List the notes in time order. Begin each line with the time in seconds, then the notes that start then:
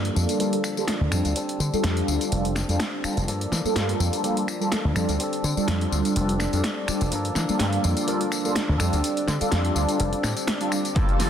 Already playing: F3 A#3 D4 A4 D5
0.05 G3 A#3 F4 A4, closed hi-hat
0.15 F2 A#3 D4 A4, tambourine
0.29 closed hi-hat, tambourine
0.39 F3 G3 A#3 D4 F4 A4, closed hi-hat, tambourine
0.53 closed hi-hat
0.64 finger snap, tambourine
0.77 G3 A#3 F4 A4, tambourine
0.88 finger snap, snare, closed hi-hat, tambourine
1.01 D2
1.11 F2 G3 C4 D4 F4 A4, finger snap, tambourine
1.25 D2, closed hi-hat, tambourine
1.35 G3 C4 D4 A4, closed hi-hat, tambourine
1.49 closed hi-hat
1.60 D3, tambourine
1.73 G3 D4 F4 A4, muted slap bass stroke, tambourine
1.84 F2, snare, closed hi-hat, tambourine
1.97 G3 D4 F4 A4, closed hi-hat
2.07 D2 C4 D4 A4, tambourine
2.21 closed hi-hat, tambourine
2.30 F1 G3 C4 D4 F4 A4, closed hi-hat, tambourine
2.35 A4
2.45 closed hi-hat
2.56 finger snap, snare, tambourine
2.68 F2 G3 D4 F4 A4, closed hi-hat, tambourine
2.80 finger snap, snare, closed hi-hat
3.04 G3 D4 F4 A4, finger snap, muted slap bass stroke, tambourine
3.17 F1, closed hi-hat, tambourine
3.27 G2 F3 A#3 D4 A4 D5, closed hi-hat, tambourine
3.41 closed hi-hat
3.52 E3, snare, tambourine
3.65 G3 A#3 F4 A4, muted slap bass stroke, tambourine
3.76 G2, snare, closed hi-hat, tambourine
3.88 G3 A#3 F4 A4, closed hi-hat
3.99 F2 A#3 D4 A4, tambourine
4.13 closed hi-hat, tambourine
4.23 F3 G3 A#3 D4 F4 A4, closed hi-hat, tambourine
4.37 closed hi-hat
4.48 finger snap, tambourine
4.60 G3 A#3 F4 A4, tambourine
4.72 finger snap, snare, closed hi-hat, tambourine
4.85 D2
4.95 F2 G3 C4 D4 F4 A4, finger snap, tambourine
5.09 D2, closed hi-hat, tambourine
5.18 G3 C4 D4, closed hi-hat, tambourine
5.23 A4
5.33 closed hi-hat
5.44 D3, tambourine
5.56 G3 D4 F4 A4, muted slap bass stroke, tambourine
5.68 F2, snare, closed hi-hat
5.80 G3 D4 F4 A4, closed hi-hat
5.92 D2, tambourine
6.05 closed hi-hat, tambourine
6.15 F1 G3 C4 D4 F4 A4, closed hi-hat, tambourine
6.29 closed hi-hat
6.40 finger snap, snare, tambourine
6.53 F2 G3 D4 F4 A4, closed hi-hat, tambourine
6.64 finger snap, snare, closed hi-hat, tambourine
6.87 G3 C4 D4 F4 A4, finger snap, muted slap bass stroke, tambourine
7.01 F1, closed hi-hat, tambourine
7.11 G2 F3 A#3 D4, closed hi-hat, tambourine
7.15 A4
7.25 closed hi-hat
7.35 E3, snare, tambourine
7.49 G3 A#3 F4 A4, muted slap bass stroke, tambourine
7.59 G2, snare, closed hi-hat, tambourine
7.72 G3 A#3 F4 A4, closed hi-hat
7.84 F2, tambourine
7.97 closed hi-hat, tambourine
8.07 F3 G3 A#3 D4 F4 A4, closed hi-hat, tambourine
8.21 closed hi-hat
8.32 finger snap, tambourine
8.44 G3 A#3 F4 A4, tambourine
8.55 finger snap, snare, closed hi-hat, tambourine
8.69 D2
8.78 F2 G3 C4 D4 F4 A4, finger snap, tambourine
8.83 G3
8.93 D2, closed hi-hat, tambourine
9.04 closed hi-hat, tambourine
9.17 closed hi-hat
9.28 D3, snare, tambourine
9.40 G3 D4 F4 A4, muted slap bass stroke, closed hi-hat, tambourine
9.52 F2, snare, closed hi-hat, tambourine
9.64 G3 D4 F4 A4, closed hi-hat
9.75 D2 C4 D4 A4, tambourine
9.89 closed hi-hat, tambourine
9.98 F1 G3 C4 D4 F4 A4, closed hi-hat, tambourine
10.03 A4
10.13 muted slap bass stroke, closed hi-hat
10.23 A2, finger snap, snare, tambourine
10.37 closed hi-hat, tambourine
10.47 finger snap, snare, closed hi-hat, tambourine
10.60 G3 D4 F4 A4, closed hi-hat
10.72 finger snap, tambourine
10.85 closed hi-hat, tambourine
10.95 G2 F3 G3 A#3 D4 F4 A4 A5, kick, closed hi-hat, tambourine, impact
11.09 closed hi-hat
11.19 E3 F3 A#3 D4 A4, snare, open hi-hat, tambourine